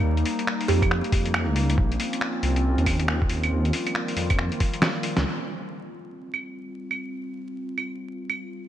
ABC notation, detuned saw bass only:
X:1
M:4/4
L:1/16
Q:"Swing 16ths" 1/4=138
K:Ebmix
V:1 name="Detuned saw bass" clef=bass
E,,2 z4 F,,3 z F,,3 D,,3 | B,,,2 z4 C,,3 E,,6- E,, | E,,2 z4 F,,3 z6 D,, | z16 |
z16 |]